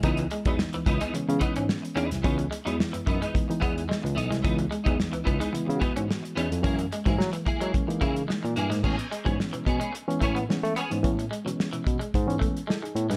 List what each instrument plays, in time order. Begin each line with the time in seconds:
0.03 tine electric piano C#2, reed electric piano E3 G#3 B3 D#4, clean electric guitar E3 B3 D#4, kick, closed hi-hat
0.17 muted clean electric guitar stroke, closed hi-hat
0.31 clean electric guitar G#3, reed electric piano B3 E4, muted clean electric guitar stroke, closed hi-hat
0.45 tine electric piano E2, reed electric piano E3 G#3 B3 D#4, clean electric guitar E3 F#3 B3 D#4, kick, closed hi-hat
0.59 muted clean electric guitar stroke, snare
0.73 tine electric piano C#2, clean electric guitar E3, muted clean electric guitar stroke, closed hi-hat
0.86 tine electric piano C#2, clean electric guitar E3 B3 D#4, muted clean electric guitar stroke, kick, closed hi-hat
1.00 clean electric guitar E3 G#3 B3 D#4, closed hi-hat
1.13 tine electric piano C#3, reed electric piano E3 G#3 B3 C#4, muted clean electric guitar stroke, closed hi-hat
1.28 tine electric piano C#3, reed electric piano E3 G#3 B3 C#4, muted clean electric guitar stroke, closed hi-hat
1.39 clean electric guitar E3 B3 D#4, kick, closed hi-hat
1.55 tine electric piano G#2, clean electric guitar C#4, muted clean electric guitar stroke, closed hi-hat
1.69 snare
1.82 muted clean electric guitar stroke, closed hi-hat
1.95 tine electric piano E2, clean electric guitar E3 B3 C#4 D#4, closed hi-hat
2.10 tine electric piano C2, muted clean electric guitar stroke, snare, closed hi-hat
2.22 tine electric piano C#2, clean electric guitar E3 B3 D#4, reed electric piano E3 G#3 B3 C#4, kick, closed hi-hat
2.37 muted clean electric guitar stroke, closed hi-hat
2.50 clean electric guitar G#3, reed electric piano B3 D#4, muted clean electric guitar stroke, closed hi-hat
2.65 tine electric piano E2, reed electric piano E3 G#3 B3 E4, clean electric guitar E3 F#3 B3 D#4, closed hi-hat
2.79 muted clean electric guitar stroke, snare
2.93 tine electric piano F#2, clean electric guitar E3, muted clean electric guitar stroke, closed hi-hat
3.06 tine electric piano F#2, clean electric guitar E3 B3 D#4, muted clean electric guitar stroke, kick, closed hi-hat
3.21 clean electric guitar E3 G#3 B3 D#4, closed hi-hat
3.34 reed electric piano E3 G#3 B3 D#4, muted clean electric guitar stroke, kick, closed hi-hat
3.48 reed electric piano E3 G#3 B3 D#4, muted clean electric guitar stroke, closed hi-hat
3.60 tine electric piano E2, clean electric guitar E3 B3 D#4, kick, closed hi-hat
3.75 muted clean electric guitar stroke, closed hi-hat
3.87 clean electric guitar G#3, muted clean electric guitar stroke, snare
4.02 tine electric piano C#2, muted clean electric guitar stroke, closed hi-hat
4.15 tine electric piano B1, clean electric guitar E3 B3 D#4, closed hi-hat
4.30 tine electric piano C2, clean electric guitar G#3, muted clean electric guitar stroke, snare, closed hi-hat
4.42 tine electric piano C#2, clean electric guitar E3 B3 D#4, reed electric piano E3 G#3 B3 D#4, kick, closed hi-hat
4.58 muted clean electric guitar stroke, closed hi-hat
4.70 clean electric guitar G#3, reed electric piano B3 D#4, muted clean electric guitar stroke, closed hi-hat
4.84 tine electric piano E2, reed electric piano E3 G#3 B3 D#4, clean electric guitar E3 F#3 B3 D#4, kick, closed hi-hat
4.97 muted clean electric guitar stroke, snare
5.11 tine electric piano C#2, clean electric guitar E3, muted clean electric guitar stroke, closed hi-hat
5.24 tine electric piano C#2, clean electric guitar E3 B3 D#4, muted clean electric guitar stroke, kick, closed hi-hat
5.39 clean electric guitar E3 G#3 B3 D#4, closed hi-hat
5.53 tine electric piano C#3, reed electric piano E3 G#3 B3 E4, muted clean electric guitar stroke, closed hi-hat
5.65 reed electric piano E3 G#3 B3 E4, muted clean electric guitar stroke
5.69 tine electric piano C#3, closed hi-hat
5.75 reed electric piano F#4
5.80 clean electric guitar E3 B3 D#4, kick, closed hi-hat
5.93 tine electric piano G#2, clean electric guitar C#4, muted clean electric guitar stroke, closed hi-hat
6.07 muted clean electric guitar stroke, snare
6.23 muted clean electric guitar stroke, closed hi-hat
6.35 tine electric piano E2, clean electric guitar E3 B3 C#4 D#4, closed hi-hat
6.51 tine electric piano F2, muted clean electric guitar stroke, closed hi-hat
6.62 tine electric piano F#2, reed electric piano E3 G#3 A#3 C#4, clean electric guitar A#3 E4 G#4, kick, closed hi-hat
6.79 muted clean electric guitar stroke, closed hi-hat
6.91 clean electric guitar G#3, reed electric piano A#3 C#4, muted clean electric guitar stroke, closed hi-hat
7.05 tine electric piano G#2, reed electric piano E3 G#3 A#3 E4, clean electric guitar F#3 A#3 E4 G#4, kick, closed hi-hat
7.18 tine electric piano F#3, muted clean electric guitar stroke, snare
7.33 clean electric guitar E3, muted clean electric guitar stroke, closed hi-hat
7.45 tine electric piano F#3, clean electric guitar A#3 E4 G#4, muted clean electric guitar stroke, kick, closed hi-hat
7.60 tine electric piano F#3, clean electric guitar G#3 A#3 E4 G#4, closed hi-hat
7.73 reed electric piano E3 G#3 A#3 C#4, muted clean electric guitar stroke, kick, closed hi-hat
7.87 reed electric piano E3 G#3 A#3 D#4, muted clean electric guitar stroke, closed hi-hat
8.01 tine electric piano C#3, clean electric guitar A#3 E4 G#4, kick, closed hi-hat
8.15 muted clean electric guitar stroke, closed hi-hat
8.28 clean electric guitar G#3, muted clean electric guitar stroke, snare
8.44 tine electric piano A#2, muted clean electric guitar stroke, closed hi-hat
8.56 tine electric piano G2, clean electric guitar A#3 E4 G#4, closed hi-hat
8.70 tine electric piano G#2, clean electric guitar G#3, muted clean electric guitar stroke, snare, closed hi-hat
8.83 tine electric piano A2, reed electric piano E3 G#3 B3 C#4, clean electric guitar B3 C#4 G#4, kick, crash
8.97 reed electric piano C#4, muted clean electric guitar stroke, closed hi-hat
9.10 clean electric guitar G#3, muted clean electric guitar stroke, closed hi-hat
9.25 tine electric piano G#2, reed electric piano E3 G#3 B3 C#4, clean electric guitar F#3 B3 C#4 G#4, kick, closed hi-hat
9.39 muted clean electric guitar stroke, snare
9.53 tine electric piano B2, clean electric guitar E3, muted clean electric guitar stroke, closed hi-hat
9.65 tine electric piano B2, clean electric guitar B3 C#4 G#4, muted clean electric guitar stroke, kick, closed hi-hat
9.80 clean electric guitar G#3 B3 C#4 G#4, closed hi-hat
9.94 reed electric piano B3 C#4, muted clean electric guitar stroke, closed hi-hat
10.07 reed electric piano E3 G#3 B3 C#4, muted clean electric guitar stroke, closed hi-hat
10.20 tine electric piano A2, clean electric guitar A3 B3 C#4 G#4, kick, closed hi-hat
10.35 clean electric guitar B3, muted clean electric guitar stroke, closed hi-hat
10.49 reed electric piano E3 G#3 B3 C#4, muted clean electric guitar stroke, snare
10.63 tine electric piano A3, muted clean electric guitar stroke, closed hi-hat
10.76 clean electric guitar B3 C#4 G#4, closed hi-hat
10.90 tine electric piano G#2, reed electric piano E3 G#3 B3 C#4, muted clean electric guitar stroke, closed hi-hat
11.03 tine electric piano A2, reed electric piano E3 G#3 B3 C#4, kick, closed hi-hat
11.18 reed electric piano B3 C#4, muted clean electric guitar stroke, closed hi-hat
11.31 clean electric guitar G#3, closed hi-hat
11.45 tine electric piano B2, reed electric piano E3 G#3 B3 C#4, clean electric guitar F#3, closed hi-hat
11.60 snare
11.73 tine electric piano B2, clean electric guitar E3, closed hi-hat
11.84 tine electric piano B2, muted clean electric guitar stroke, kick, closed hi-hat
11.99 clean electric guitar G#3, closed hi-hat
12.12 tine electric piano G#2, reed electric piano B3 C#4, kick, closed hi-hat
12.26 reed electric piano E3 G#3 B3 C#4, closed hi-hat
12.39 clean electric guitar A3, kick, closed hi-hat
12.57 closed hi-hat
12.67 clean electric guitar G#3, reed electric piano E4 A4, snare
12.82 reed electric piano D#4 G#4, muted clean electric guitar stroke, closed hi-hat
12.95 tine electric piano A2, reed electric piano B3 E4, closed hi-hat
13.10 tine electric piano G2, clean electric guitar G#3, reed electric piano G#3 C#4, snare, closed hi-hat